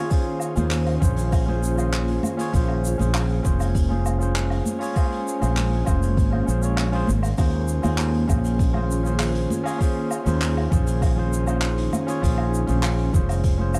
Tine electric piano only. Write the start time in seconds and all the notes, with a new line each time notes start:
0.10 C#4 F4 G#4 C5
0.56 C#4 F4 G#4 C5
1.00 C#4 F4 G#4 C5
1.46 C#4 F4 G#4 C5
1.76 C#4 F4 G#4 C5
2.37 C#4 F4 G#4 C#5
2.53 C#4 F4 G#4 C5
2.98 C#4 F4 G#4 C5
3.43 C#4 F4 G#4 C5
3.89 C#4 F4 G#4 C5
4.18 C#4 F4 G#4 C5
4.79 C#4 F4 G#4 C#5
4.93 C#4 F4 G#4 C5
5.40 C#4 F4 G#4 C5
5.85 C#4 F4 G#4 C5
6.30 C#4 F4 G#4 C5
6.46 C#4 F4 G#4 C5
6.62 C#4 F4 G#4 C#5
6.92 C#4 F4 G#4 C5
7.37 C#4 F4 G#4 C5
7.82 C#4 F4 G#4 C5
8.27 C#4 F4 G#4 C5
8.73 C#4 F4 G#4 C5
9.03 C#4 F4 G#4
9.07 C5
9.64 C#4 F4 G#4 C#5
9.79 C#4 F4 G#4 C5
10.25 C#4 F4 G#4 C5
10.70 C#4 F4 G#4 C5
11.16 C#4 F4 G#4 C5
11.46 C#4 F4 G#4 C5
12.06 C#4 F4 G#4 C#5
12.21 C#4 F4 G#4 C5
12.67 C#4 F4 G#4 C5
13.12 C#4 F4 G#4 C5
13.58 C#4 F4 G#4 C5